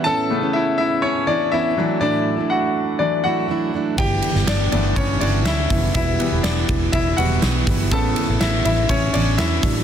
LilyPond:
<<
  \new Staff \with { instrumentName = "Grand piano" } { \time 4/4 \key a \mixolydian \tempo 4 = 122 <a' a''>4 <e' e''>8 <e' e''>8 <cis' cis''>8 <d' d''>8 <e' e''>4 | <d' d''>4 <fis' fis''>4 d''8 <fis' fis''>4 r8 | <g' g''>4 <d' d''>8 <d' d''>8 <cis' cis''>8 <d' d''>8 <e' e''>4 | <e' e''>4 <d' d''>4 <e' e''>8 <fis' fis''>4 r8 |
<a' a''>4 <e' e''>8 <e' e''>8 <cis' cis''>8 <d' d''>8 <e' e''>4 | }
  \new Staff \with { instrumentName = "Grand piano" } { \clef bass \time 4/4 \key a \mixolydian r8 <cis a b>8 r2 r8 <e fis d'>8~ | <e fis d'>4 r4 <e fis d'>8 r4. | r4. <e a b>8 r2 | r8 <e g b>2 <e g b>8 r4 |
<cis a b>8 r2. r8 | }
  \new Staff \with { instrumentName = "Steel-string acoustic guitar" } { \time 4/4 \key a \mixolydian <a, e b cis' e'>8. <b cis' e'>4.~ <b cis' e'>16 <e b cis' e'>8 <e b cis' e'>8 <fis a d' e'>8 | <a, fis a d' e'>8. <a d' e'>4.~ <a d' e'>16 <fis a d' e'>8 <fis a d' e'>8 <fis a d' e'>8 | <g, d e g e'>8. <e g b e'>4.~ <e g b e'>16 <e g b e'>8 <e g b e'>8 <e g b e'>8 | <e, b, e g b e'>8. <e g b e'>4.~ <e g b e'>16 <e g b e'>8 <e g b e'>8 <e g b e'>8 |
<a, e b cis' e'>8. <b cis' e'>4.~ <b cis' e'>16 <e b cis' e'>8 <e b cis' e'>8 <fis a d' e'>8 | }
  \new Staff \with { instrumentName = "Fingered electric bass" } { \clef bass \time 4/4 \key a \mixolydian r1 | r1 | g,,8 r16 g,,16 r8 g,,8 g,,8 g,,8 d,8 fis,,8 | e,,8 r16 e,,16 e,,8 e,,8 e,,8 e,,8 b,,8 g,,8 |
a,,8 r16 a,,16 a,,8 a,,8 a,,8 a,,8 e,8 a,,8 | }
  \new DrumStaff \with { instrumentName = "Drums" } \drummode { \time 4/4 r4 r4 r4 r4 | r4 r4 r4 r4 | <bd cymr>8 cymr16 sn16 <cymr sn>8 cymr8 <bd cymr>8 cymr8 <cymr sn>8 <hho bd cymr>8 | <hhp bd cymr>8 cymr8 <cymr sn>8 <bd cymr>8 <bd cymr>8 cymr8 <cymr sn>8 <hho bd cymr>8 |
<bd cymr>8 cymr8 <cymr sn>8 cymr8 <bd cymr>8 cymr8 <cymr sn>8 <hho bd cymr>8 | }
>>